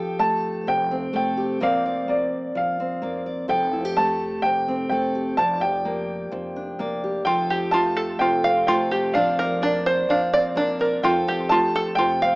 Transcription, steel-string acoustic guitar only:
0.00 1.60 F3 medium
0.00 1.36 G4 soft
0.00 1.12 A4 medium
0.19 1.12 A3 medium
0.67 1.59 C3 medium
0.91 1.61 C4 soft
1.13 1.58 A3 medium
1.13 1.61 A4 medium
1.37 1.58 G4 medium
1.60 2.55 F3 medium
1.60 2.07 A#3 medium
1.60 2.79 C4 medium
1.60 1.84 D5 medium
1.86 3.01 D5 medium
2.08 3.00 A#3 medium
2.55 3.48 F3 medium
2.80 4.67 C4 medium
3.02 3.47 A#3 medium
3.02 3.25 D5 medium
3.26 3.47 D5 medium
3.48 5.37 F3 medium
3.48 4.91 A4 medium
3.73 3.85 E4 soft
3.85 5.14 G4 soft
3.97 4.90 A3 medium
4.45 5.36 C3 medium
4.68 5.39 C4 soft
4.91 5.36 A3 medium
4.91 5.38 A4 medium
5.15 5.41 G4 soft
5.38 6.31 F3 medium
5.38 6.79 D5 medium
5.62 7.03 G4 soft
5.85 6.78 A#3 medium
6.32 7.25 F3 medium
6.56 7.24 D4 soft
6.79 7.24 A#3 medium
6.79 7.24 D5 medium
7.04 7.24 G4 soft
7.25 9.15 F3 medium
7.25 8.68 A4 medium
7.50 8.91 G4 soft
7.73 8.67 A3 medium
8.20 9.12 C3 medium
8.45 10.33 C4 soft
8.68 9.13 A3 medium
8.68 9.16 A4 medium
8.92 9.13 G4 soft
9.16 10.08 F3 medium
9.16 9.39 D5 medium
9.40 10.56 D5 medium
9.62 10.54 A#3 medium
10.09 11.01 F3 medium
10.34 12.22 C4 soft
10.56 11.01 A#3 medium
10.56 10.78 D5 medium
10.79 11.01 D5 medium
11.03 12.35 F3 medium
11.03 12.35 A4 medium
11.28 12.35 G4 soft
11.51 12.35 A3 medium
11.99 12.35 C3 medium
12.23 12.35 C4 soft

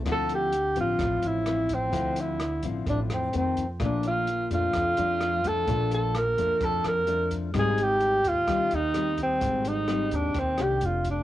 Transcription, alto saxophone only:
0.12 0.31 A4 medium
0.35 0.76 G4 medium
0.80 1.28 F4 medium
1.27 1.76 E4 medium
1.74 2.22 C4 medium
2.21 2.65 E4 medium
2.90 3.00 D4 medium
3.14 3.34 C4 medium
3.37 3.68 C4 medium
3.84 4.04 D4 medium
4.07 4.49 F4 medium
4.54 5.49 F4 medium
5.47 5.92 A4 loud
5.94 6.19 A4 medium
6.18 6.66 A#4 loud
6.64 6.89 A4 medium
6.88 7.33 A#4 medium
7.59 7.84 G#4 loud
7.83 8.30 G4 loud
8.28 8.76 F4 loud
8.75 9.20 D#4 medium
9.23 9.70 C4 medium
9.68 10.16 D#4 medium
10.15 10.41 D4 medium
10.39 10.64 C4 medium
10.62 10.87 G4 medium
10.85 11.07 F4 medium
11.10 11.23 D4 medium

